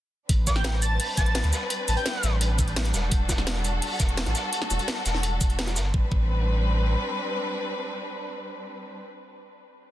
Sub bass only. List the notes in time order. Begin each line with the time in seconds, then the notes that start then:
0.29 A1
1.18 A1
1.44 D2
1.88 A1
2.23 A1
2.94 E1
3.12 E1
4.00 E1
4.27 A1
4.71 E1
5.06 E1
5.41 E1
5.76 G1
5.94 A1
6.12 A1